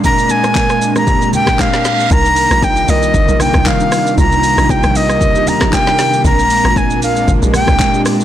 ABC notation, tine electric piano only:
X:1
M:4/4
L:1/16
Q:"Swing 16ths" 1/4=116
K:Cm
V:1 name="Tine electric piano"
[B,,A,CDB]2 z [B,,A,CDB]3 z [B,,A,CDG]6 z3 | [C,G,DEB]2 z [C,G,DEF]2 z [C,G,CEB]2 z [C,G,DEB]3 z [C,G,DEF]2 z | [C,G,DEF]2 z [C,G,DEG]2 z [C,G,CEB]2 z [C,G,DEG]3 z [C,G,DEB]2 z | [B,,A,CDB]2 z [B,,A,CDF]2 z [B,,A,CDB]2 z [B,,A,CDG]3 z [B,,A,CDG]2 z |]